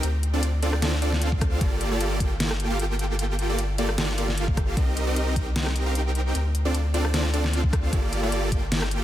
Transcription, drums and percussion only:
0.03 closed hi-hat medium
0.23 closed hi-hat medium
0.43 closed hi-hat medium
0.63 closed hi-hat medium
0.73 cross-stick medium
0.82 snare loud
0.82 closed hi-hat medium
1.02 closed hi-hat medium
1.13 snare soft
1.22 closed hi-hat medium
1.32 kick medium
1.41 kick loud
1.41 cross-stick medium
1.41 closed hi-hat medium
1.61 kick loud
1.61 closed hi-hat medium
1.81 closed hi-hat medium
2.01 closed hi-hat medium
2.20 kick medium
2.20 closed hi-hat medium
2.40 snare loud
2.40 closed hi-hat medium
2.51 cross-stick medium
2.60 closed hi-hat medium
2.80 closed hi-hat medium
2.99 closed hi-hat medium
3.19 closed hi-hat medium
3.39 closed hi-hat medium
3.59 closed hi-hat medium
3.78 closed hi-hat medium
3.89 cross-stick medium
3.98 snare loud
3.98 closed hi-hat medium
4.18 closed hi-hat medium
4.28 snare soft
4.38 closed hi-hat medium
4.48 kick medium
4.57 kick loud
4.57 cross-stick medium
4.57 closed hi-hat medium
4.77 kick loud
4.77 closed hi-hat medium
4.97 closed hi-hat medium
5.16 closed hi-hat medium
5.36 kick medium
5.36 closed hi-hat medium
5.56 snare loud
5.56 closed hi-hat medium
5.66 cross-stick medium
5.76 closed hi-hat medium
5.95 closed hi-hat medium
6.15 closed hi-hat medium
6.35 closed hi-hat medium
6.55 closed hi-hat medium
6.75 closed hi-hat medium
6.94 closed hi-hat medium
7.05 cross-stick medium
7.14 snare loud
7.14 closed hi-hat medium
7.34 closed hi-hat medium
7.44 snare soft
7.53 closed hi-hat medium
7.64 kick medium
7.73 kick loud
7.73 cross-stick medium
7.73 closed hi-hat medium
7.93 kick loud
7.93 closed hi-hat medium
8.13 closed hi-hat medium
8.32 closed hi-hat medium
8.52 kick medium
8.52 closed hi-hat medium
8.72 snare loud
8.72 closed hi-hat medium
8.82 cross-stick medium
8.91 closed hi-hat medium

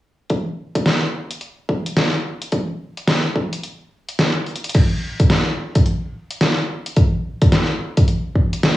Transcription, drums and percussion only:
0.30 kick loud
0.30 closed hi-hat medium
0.75 kick loud
0.75 closed hi-hat medium
0.86 snare loud
0.86 closed hi-hat medium
1.31 closed hi-hat medium
1.41 closed hi-hat medium
1.69 kick loud
1.86 closed hi-hat medium
1.97 snare loud
1.97 closed hi-hat medium
2.42 closed hi-hat medium
2.52 kick loud
2.52 closed hi-hat medium
2.97 closed hi-hat medium
3.08 snare loud
3.08 closed hi-hat medium
3.36 kick loud
3.53 closed hi-hat medium
3.63 closed hi-hat medium
4.09 closed hi-hat medium
4.19 snare loud
4.19 closed hi-hat medium
4.46 closed hi-hat medium
4.56 closed hi-hat medium
4.64 closed hi-hat medium
4.69 closed hi-hat medium
4.74 kick loud
4.74 closed hi-hat medium
4.74 crash medium
5.20 kick loud
5.20 closed hi-hat medium
5.30 snare loud
5.30 closed hi-hat medium
5.75 kick loud
5.75 closed hi-hat medium
5.86 closed hi-hat medium
6.31 closed hi-hat medium
6.41 snare loud
6.41 closed hi-hat medium
6.86 closed hi-hat medium
6.96 kick loud
6.96 closed hi-hat medium
7.42 kick loud
7.42 closed hi-hat medium
7.52 snare loud
7.52 closed hi-hat medium
7.97 kick loud
7.97 closed hi-hat medium
8.08 closed hi-hat medium
8.36 kick medium
8.53 closed hi-hat medium
8.63 snare loud
8.63 closed hi-hat medium

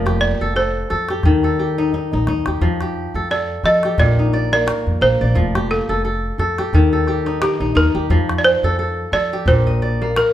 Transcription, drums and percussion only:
0.07 calabash click soft
0.23 calabash click soft
0.57 calabash click soft
0.90 calabash click soft
1.09 calabash click soft
1.23 calabash thump medium
1.23 calabash click soft
1.43 calabash click soft
1.93 calabash thump soft
2.12 calabash thump soft
2.27 calabash click soft
2.46 calabash click soft
2.61 calabash thump medium
2.81 calabash click soft
3.64 calabash click soft
3.83 calabash click soft
3.98 calabash thump medium
4.33 calabash click soft
4.53 calabash click soft
4.68 calabash click medium
5.37 calabash thump medium
5.55 calabash click medium
6.39 calabash click soft
6.58 calabash click soft
6.74 calabash thump medium
7.07 calabash click soft
7.27 calabash click soft
7.42 calabash click medium
8.10 calabash thump medium
8.29 calabash click soft
9.14 calabash click soft
9.48 calabash thump medium
9.82 calabash click soft
10.02 calabash click soft
10.16 calabash click medium

